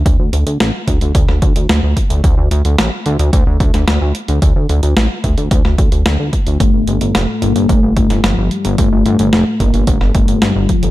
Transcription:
<<
  \new Staff \with { instrumentName = "Soft synth lead" } { \time 4/4 \key d \minor \tempo 4 = 110 r1 | r1 | r1 | a8 a4 bes8 a8 a8 f8 g8 |
a8 a4 bes8 a8 a8 g8 f8 | }
  \new Staff \with { instrumentName = "Analog synth bass" } { \clef bass \time 4/4 \key d \minor d,16 d,16 d,16 d,16 a,,16 r16 d,16 d,16 d,16 d,16 d,16 d,16 d,16 d,16 r16 d,16 | d,16 d,16 d,16 d,16 a,,16 r16 d,16 d,16 d,16 d,16 d,16 d,16 d,16 d,16 r16 d,16 | d,16 d,16 d,16 d,16 a,,16 r16 d,16 d,16 d,16 d,16 d,16 d,16 d,16 d,16 r16 d,16 | g,,16 g,,16 g,,16 g,,16 f,,16 r16 g,,16 g,,16 g,,16 g,,16 g,,16 g,,16 g,,16 g,,16 r16 g,,16 |
g,,16 g,,16 g,,16 g,,16 f,,16 r16 g,,16 g,,16 g,,16 g,,16 g,,16 g,,16 g,,16 g,,16 r16 g,,16 | }
  \new DrumStaff \with { instrumentName = "Drums" } \drummode { \time 4/4 <hh bd>8 hh16 hh16 <hh sn>8 <hh bd>16 hh16 <hh bd>16 sn16 <hh bd>16 hh16 <hh sn>8 <hh bd>16 hh16 | <hh bd>8 hh16 hh16 <hh sn>8 hh16 hh16 <hh bd>8 <hh bd>16 <hh sn>16 <hh sn>8 hh16 hh16 | <hh bd>8 hh16 hh16 <hh sn>8 <hh bd>16 hh16 <hh bd>16 sn16 <hh bd>16 hh16 <hh sn>8 <hh bd>16 hh16 | <hh bd>8 hh16 hh16 <hh sn>8 hh16 hh16 <hh bd>8 <hh bd>16 <hh sn>16 <hh sn>8 hh16 hh16 |
<hh bd>8 hh16 hh16 <hh sn>8 <hh bd>16 hh16 <hh bd>16 sn16 <hh bd>16 hh16 <hh sn>8 <hh bd>16 hh16 | }
>>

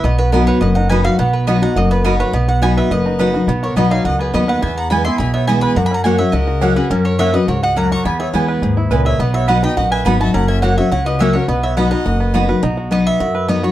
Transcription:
<<
  \new Staff \with { instrumentName = "Mandolin" } { \time 4/4 \key b \major \tempo 4 = 210 dis''8 b'8 ais'8 cis''8 dis''8 fis''8 gis''8 eis''8 | fis''8 b'8 dis''8 fis''8 dis''8 b'8 ais'8 cis''8 | dis''8 fis''8 gis''8 e''8 dis''2 | r8 cis''8 dis''8 eis''8 fis''8 b'8 dis''8 fis''8 |
gis''8 ais''8 b''8 c'''8 b''8 e''8 gis''8 b''8 | \tuplet 3/2 { ais''8 b''8 ais''8 } gis''8 e''8 dis''4. b'8 | ais'8 cis''8 e''8 dis''8 cis''8 fis''8 ais''8 cis'''8 | b''8 e''8 r2 r8 e''8 |
dis''8 e''8 fis''8 g''8 fis''8 gis''8 b''8 a''8 | ais''8 gis''8 fis''8 e''8 fis''8 dis''8 e''8 cis''8 | dis''8 e''8 fis''8 fis''4. r4 | r4 dis''8 e''4. dis''8 cis''8 | }
  \new Staff \with { instrumentName = "Fiddle" } { \time 4/4 \key b \major r1 | r1 | r2 b'2 | r8 ais'8 b'8 cis''8 dis''8 gis'8 b'8 dis''8 |
e''8 fis''8 gis''8 gis''8 gis''8 cis''8 e''8 gis''8 | \tuplet 3/2 { fis''8 gis''8 fis''8 } cis''8 cis''8 ais'4. gis'8 | fis'8 ais'8 cis''8 b'8 ais'8 dis''8 fis''8 ais''8 | gis''8 cis''8 r2 r8 cis''8 |
b'8 cis''8 dis''8 dis''8 dis''8 e''8 fis''8 e''8 | fis''8 e''8 cis''8 cis''8 cis''8 b'8 cis''8 ais'8 | b'8 cis''8 dis''8 dis''4. r4 | r1 | }
  \new Staff \with { instrumentName = "Mandolin" } { \time 4/4 \key b \major r4 <b fis' dis'' b''>8 r4. <b fis' dis'' b''>8 r8 | r4 <b fis' dis'' b''>8 r4. <b fis' dis'' b''>8 r8 | r4 <b fis' dis'' b''>8 r4. <b fis' dis'' b''>8 r8 | r4 <b fis' dis'' b''>8 r4. <b fis' dis'' b''>8 r8 |
r4 <b e' b' gis''>8 r4. <b e' b' gis''>8 r8 | r4 <ais fis' cis'' fis''>8 r4. <ais fis' cis'' fis''>8 r8 | r4 <ais fis' cis'' fis''>8 r4. <ais fis' cis'' fis''>8 r8 | r4 <b e' b' gis''>8 r4. <b e' b' gis''>8 r8 |
r4 <b fis' dis'' b''>8 r4. <b fis' dis'' b''>8 r8 | r4 <ais fis' cis'' fis''>8 r4. <ais fis' cis'' fis''>8 r8 | r4 <b fis' dis'' b''>8 r4. <b fis' dis'' b''>8 r8 | r1 | }
  \new Staff \with { instrumentName = "Five-string banjo" } { \time 4/4 \key b \major b8 fis'8 b8 b'8 fis'8 dis'8 b'8 fis'8 | b4 b8 dis'8 fis'8 b8 fis'8 b'8 | b8 fis'8 b8 b'8 fis'8 dis'8 b'8 fis'8 | b8 fis'8 b8 dis'8 fis'8 b8 fis'8 b'8 |
b4 b8 e'8 gis'8 b8 gis'8 b'8 | fis'8 cis'8 fis'8 fis'8 fis'8 fis'8 cis'8 fis'8 | cis'4 fis'8 fis'8 fis'8 fis'8 cis'8 fis'8 | b8 gis'8 b8 b'8 gis'8 e'8 b'8 gis'8 |
b8 fis'8 b'8 dis'8 fis'8 b'8 b8 fis'8 | cis'8 fis'8 fis'8 fis'8 fis'8 fis'8 cis'8 fis'8 | b8 fis'8 b8 dis'8 fis'8 b8 fis'8 b'8 | dis'8 fis'8 b4 fis'8 b'8 b8 fis'8 | }
  \new Staff \with { instrumentName = "Steel-string acoustic guitar" } { \time 4/4 \key b \major << { r4 <fis b dis' fis'>4 r4 <fis b dis' fis'>8 <dis' fis'>8 | r4 <fis b dis' fis'>8 <dis' fis'>8 r4 <fis b dis' fis'>4 | r4 <fis b dis' fis'>4 r4 <fis b dis' fis'>8 <dis' fis'>8 | r4 <fis b dis' fis'>4 r4 <fis b dis' fis'>4 |
r4 <e gis b e'>8 <b e'>8 r4 <e gis b e'>4 | r4 <fis ais cis' fis'>8 <cis' fis'>8 r4 <fis ais cis' fis'>8 <cis' fis'>8 | r4 <fis ais cis' fis'>8 <cis' fis'>8 r2 | r4 <e gis b e'>4 r2 |
r4 <fis b dis' fis'>8 <dis' fis'>8 r4 <fis b dis' fis'>8 <dis' fis'>8 | r4 <fis ais cis' fis'>8 <cis' fis'>8 r4 <fis ais cis' fis'>8 <cis' fis'>8 | r4 <fis b dis' fis'>8 <dis' fis'>8 r4 <fis b dis' fis'>8 <dis' fis'>8 | r4 <fis b dis' fis'>4 r4 <fis b dis' fis'>8 <dis' fis'>8 | } \\ { b,2 fis,2 | b,2 fis,2 | b,2 fis,2 | b,2 fis,2 |
e,2 b,2 | fis,2 cis2 | fis,2 gis,4 fis,4 | e,2 gis,4 ais,4 |
b,2 fis,2 | fis,2 cis2 | b,2 fis,2 | b,2 fis,2 | } >> }
  \new Staff \with { instrumentName = "Upright bass" } { \clef bass \time 4/4 \key b \major b,,2 fis,,2 | b,,2 fis,,2 | b,,2 fis,,2 | b,,4 b,,4 cis,4 dis,4 |
e,2 b,,2 | fis,2 cis,2 | fis,2 cis,2 | e,4 e,4 dis,4 cis,4 |
b,,2 ais,,4 gis,,4 | fis,,2 cis,2 | b,,2 fis,,2 | b,,2 fis,2 | }
>>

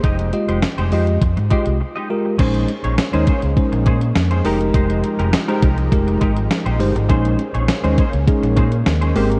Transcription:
<<
  \new Staff \with { instrumentName = "Clean electric guitar" } { \time 4/4 \key bes \dorian \tempo 4 = 102 <aes ees' g' ees''>8 r16 <aes ees' g' c''>16 r16 <aes ees' g' c''>16 <aes ees' g' c''>16 r8. <aes ees' g' c''>16 r8 <aes ees' g' ees''>16 r8 | <des' ees' aes' c''>8 r16 <des' ees' aes' des''>16 r16 <des' ees' aes' c''>16 <des' ees' aes' c''>16 r8. <des' ees' aes' c''>16 r8 <des' ees' aes' c''>16 <aes ees' g' bes'>16 r16 | <aes ees' g' c''>8 r16 <aes ees' g' bes'>16 r16 <aes ees' g' bes'>16 <aes ees' g' bes'>16 r8. <aes ees' g' bes'>16 r8 <aes ees' g' c''>16 r8 | <des' ees' aes' c''>8 r16 <des' ees' aes' des''>16 r16 <des' ees' aes' c''>16 <des' ees' aes' c''>16 r8. <des' ees' aes' c''>16 r8 <des' ees' aes' c''>16 <bes ees' g' c''>16 r16 | }
  \new Staff \with { instrumentName = "Tine electric piano" } { \time 4/4 \key bes \dorian r8 <aes f' g' ees''>8 r8 <aes f' g' ees''>8 r8 <aes f' g' ees''>8 r8 <aes f' g' bes'>8 | <aes des' ees' c''>8 r8. <aes des' ees' c''>16 r8 <aes des' ees' c''>8. r8. <aes ees' g' bes'>8~ | <aes ees' g' bes'>4 r16 <aes ees' g' c''>16 r8 <aes ees' g' bes'>8. r8. <aes ees' g' c''>16 r16 | <aes des' ees' c''>8 r8. <aes des' ees' c''>16 r8 <aes des' ees' aes'>8. r8. <aes c' g' bes'>8 | }
  \new Staff \with { instrumentName = "Analog synth pad" } { \time 4/4 \key bes \dorian r1 | <aes bes des'>2.~ <aes bes des'>8 <f aes ees' g' bes'>8~ | <f aes ees' g' bes'>1 | <aes bes des'>2.~ <aes bes des'>8 <c' g'>8 | }
  \new Staff \with { instrumentName = "Fingered electric bass" } { \clef bass \time 4/4 \key bes \dorian f,,8 r16 f,,16 r16 f,,16 f,8 f,16 aes,16 r16 c,16 r4 | bes,,8 r16 bes,,16 r16 ees,16 r16 des,16 r16 bes,,16 bes,8 f,8 f,,8 | f,,8 r16 f,,16 r8 c,8 f,,8 aes,,8 r16 bes,,16 g,,16 aes,,16 | bes,,8 r16 bes,,16 r16 ees,16 r16 des,16 r16 bes,,16 bes,8 ees,8 aes,,8 | }
  \new DrumStaff \with { instrumentName = "Drums" } \drummode { \time 4/4 <hh bd>16 hh16 hh16 hh16 <hh sn>16 hh16 hho16 hh16 <hh bd>16 hh16 <hh bd>16 hh16 r4 | <cymc hh bd>16 hh16 hh16 hh16 <hh sn>16 hh16 <hh bd>16 hh16 <hh bd>16 hh16 <hh bd>16 hh16 <hh sn>16 hh16 hho16 hh16 | <hh bd>16 hh16 hh16 hh16 <hh sn>16 hh16 <hh bd>16 hh16 <hh bd>16 hh16 <hh bd>16 hh16 <hh sn>16 hh16 hho16 hh16 | <hh bd>16 hh16 hh16 hh16 <hh sn>16 hh16 <hh bd>16 hh16 <hh bd>16 hh16 <hh bd>16 hh16 <hh sn>16 hh16 hho16 hh16 | }
>>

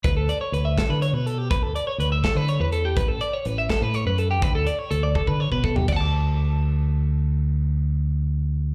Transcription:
<<
  \new Staff \with { instrumentName = "Clean electric guitar" } { \time 6/8 \key d \major \tempo 4. = 82 b'16 a'16 d''16 cis''16 b'16 e''16 a'16 b'16 cis''16 b'16 a'16 g'16 | b'16 a'16 d''16 cis''16 b'16 e''16 a'16 b'16 cis''16 b'16 a'16 g'16 | b'16 a'16 d''16 cis''16 b'16 e''16 a'16 b'16 cis''16 b'16 a'16 g'16 | b'16 a'16 d''16 cis''16 a'16 d''16 a'16 b'16 cis''16 b'16 a'16 g'16 |
<d'' fis'' a'' d'''>2.~ | <d'' fis'' a'' d'''>2. | }
  \new Staff \with { instrumentName = "Fingered electric bass" } { \clef bass \time 6/8 \key d \major d,8 r8 d,8 r16 d8 b,8. | d,8 r8 d,8 r16 d8 e,8. | a,,8 r8 a,,8 r16 a,8 fis,8. | d,8 r8 d,8 r16 d8 b,8. |
d,2.~ | d,2. | }
  \new DrumStaff \with { instrumentName = "Drums" } \drummode { \time 6/8 <hh bd>8 hh8 hh8 <hh bd sn>8 hh8 hh8 | <hh bd>8 hh8 hh8 <hh bd sn>8 hh8 hh8 | <hh bd>8 hh8 hh8 <hh bd sn>8 hh8 hh8 | <hh bd>8 hh8 hh8 bd16 bd8 bd16 bd16 tomfh16 |
<cymc bd>4. r4. | r4. r4. | }
>>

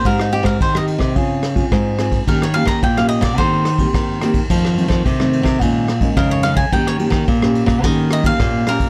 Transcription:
<<
  \new Staff \with { instrumentName = "Cavaquinho" } { \time 4/4 \key ees \mixolydian \tempo 4 = 108 bes'16 ees'16 g'16 bes'16 c''16 ees''16 r2 r8 | bes'16 des''16 f''16 bes''16 g''16 f''16 ees''16 d''16 c''2 | r2. bes'16 des''16 f''16 aes''16 | g''16 des''16 r2 ees''16 f''8. bes'8 | }
  \new Staff \with { instrumentName = "Nylon-string guitar" } { \time 4/4 \key ees \mixolydian << { <c' ees' g'>8 <c' ees' g'>8. <c' ees' g'>8. <c' f' aes'>8 r16 <c' f' aes'>8. <c' f' aes'>8 | <bes des' g'>16 r16 <bes des' g'>8 r16 <bes des' g'>8. <bes c' g'>8 r16 <bes c' g'>8. <bes c' g'>16 r16 | <ees a c'>8 <ees a c'>8. <ees a c'>8. <ees aes des'>8 r16 <ees aes des'>8. <ees aes des'>16 r16 | <bes des' g'>8 <bes des' g'>8. <bes des' g'>8. <bes des' g'>8. <bes des' g'>8. <bes des' g'>16 r16 | } \\ { aes4 ees4 des4 aes,4 | ees4 bes,4 ees4 ees4 | f,4 c4 bes,4 f,4 | ees4 bes,4 ees4 bes,4 | } >> }
  \new Staff \with { instrumentName = "Nylon-string guitar" } { \clef bass \time 4/4 \key ees \mixolydian aes,8. aes,16 ees8. c16 des4 aes,4 | ees8. ees16 bes,8. bes,16 ees4 ees4 | f8. f16 c8. c16 bes,4 des4 | ees8. ees16 bes,8. bes,16 ees4 bes,4 | }
  \new DrumStaff \with { instrumentName = "Drums" } \drummode { \time 4/4 <bd cymr>16 ss16 cymr16 <bd cymr ss>16 <bd cymr>16 ss16 cymr16 <bd cymr ss>16 <bd cymr>8 <cymr ss>16 <bd cymr>16 <bd cymr ss>8 <cymr ss>16 <bd cymr>16 | <bd cymr>16 ss16 cymr16 <bd cymr ss>16 <bd cymr>16 ss16 cymr16 <bd cymr ss>16 <bd cymr>8 <cymr ss>16 <bd cymr>16 <bd cymr ss>8 <cymr ss>16 <bd cymr>16 | <bd cymr>16 ss16 cymr16 <bd cymr ss>16 <bd cymr>16 ss16 cymr16 <bd cymr ss>16 <bd cymr>8 <cymr ss>16 <bd cymr>16 <bd cymr ss>8 <cymr ss>16 <bd cymr>16 | <bd cymr>16 ss16 cymr16 <bd cymr ss>16 <bd cymr>16 ss16 cymr16 <bd cymr ss>16 <bd cymr>8 <cymr ss>16 <bd cymr>16 <bd cymr ss>8 <cymr ss>16 <bd cymr>16 | }
>>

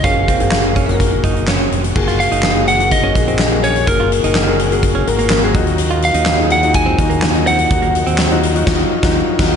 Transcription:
<<
  \new Staff \with { instrumentName = "Lead electric guitar" } { \time 4/4 \key ges \lydian \tempo 4 = 125 f''2 r2 | r8 f''4 ges''8 ees''4. des''8 | bes'2. r4 | r8 f''4 ges''8 aes''4. ges''8~ |
ges''2. r4 | }
  \new Staff \with { instrumentName = "Grand piano" } { \time 4/4 \key ges \lydian <bes ges' aes'>8 r16 <bes ges' aes'>8. r16 <bes ges' aes' bes'>4. r8. | <bes ges' aes'>4 r16 <bes ges' aes'>8 <bes ges' aes'>8 r16 <bes ges' aes'>8 r16 <bes ges' aes'>8 r16 | <bes ges' aes'>4 r16 <bes ges' aes'>8 <bes ges' aes'>8 r16 <bes ges' bes'>8 r16 <bes ges' aes'>16 <ees' f' ges'>8~ | <ees' f' ges'>4 r16 <ees' f' aes'>8 <ees' f' ges'>8 r16 <ees' f' ges'>8 r16 <ees' f' ges'>8 r16 |
<ees' ges'>4 r16 <ees' f' ges'>8 <ees' f' ges'>16 <ees' f' ges'>8 r16 <ees' f' ges'>8 r16 <ees' f' ges'>8 | }
  \new Staff \with { instrumentName = "Grand piano" } { \clef bass \time 4/4 \key ges \lydian r1 | r1 | r2. r8 ees8~ | ees4 r2 r8 ees8~ |
ees4 r2. | }
  \new Staff \with { instrumentName = "Clean electric guitar" } { \time 4/4 \key ges \lydian des'8 c'8 r8 des'8 r8 ees'8 des'8. r16 | r16 f'16 r16 ees'8. r8. des'16 r16 c'16 r8 des'16 r16 | r16 f'16 r16 ees'8. r8. des'16 r16 bes8 r8. | r16 f'16 r16 ees'8. r8. c'16 r16 bes16 r8 c'16 r16 |
r16 bes16 r16 c'8. r2 r8 | }
  \new Staff \with { instrumentName = "Tonewheel organ" } { \clef bass \time 4/4 \key ges \lydian <bes, aes ges'>1 | <bes, aes ges'>1~ | <bes, aes ges'>2.~ <bes, aes ges'>8 <ees ges ees'>8~ | <ees ges ees'>1~ |
<ees ges ees'>1 | }
  \new Staff \with { instrumentName = "Fingered electric bass" } { \clef bass \time 4/4 \key ges \lydian ges,,8. ges,,4.~ ges,,16 ges,,4 f,,8 | ges,,8. ges,,4.~ ges,,16 bes,,4. | ges,,8. ges,,4.~ ges,,16 aes,,4 ees,8~ | ees,8. ees,4.~ ees,16 ees,4. |
ees,8. ees,4~ ees,16 ees,8 r16 ees,8 r16 ees,8 | }
  \new DrumStaff \with { instrumentName = "Drums" } \drummode { \time 4/4 <hh bd>8 <hh bd>16 hh16 <hc sn>8 <hh bd>16 hh16 <hh bd>16 hh16 <hh bd>16 hh16 <hc sn>8 hh16 hh16 | <cymc bd>16 <hh sn>16 hh16 hh16 <hc sn>8 hh16 hh16 <hh bd>8 <hh bd>16 hh16 <hc sn>8 hh16 hh16 | <hh bd>8 hh16 hh16 <hc sn>8 hh16 hh16 <hh bd>8 hh16 hh16 <hc sn>8 <hh bd>16 hh16 | hh16 hh16 hh16 hh16 <hc sn>8 hh16 hh16 <hh bd>8 <hh bd>16 hh16 <hc sn>16 hh16 hh16 hh16 |
<hh bd>16 hh16 hh16 hh16 <hc sn>16 hh16 hh16 hh16 <cymc bd sn>8. <bd sn>16 r8 <cymc bd sn>8 | }
>>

